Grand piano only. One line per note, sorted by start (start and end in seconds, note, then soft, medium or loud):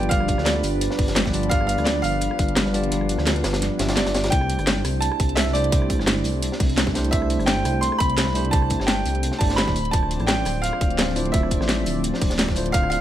0.00 0.11 G5 loud
0.09 0.46 F5 loud
0.44 1.29 D5 medium
1.49 1.65 F5 loud
1.67 1.86 F5 medium
1.84 2.03 D5 medium
2.02 4.02 F5 loud
3.95 4.32 D5 medium
4.30 4.80 G5 loud
5.01 5.38 A5 loud
5.36 5.54 E5 loud
5.53 6.55 D5 loud
7.11 7.44 E5 loud
7.46 7.83 G5 loud
7.81 8.00 C6 loud
7.99 8.54 B5 loud
8.51 8.88 A5 loud
8.86 9.41 G5 loud
9.39 9.58 A5 loud
9.56 9.93 B5 loud
9.91 10.29 A5 loud
10.26 10.64 G5 loud
10.62 11.12 F5 loud
11.32 11.99 E5 medium
12.72 12.88 F5 loud
12.90 13.01 F5 loud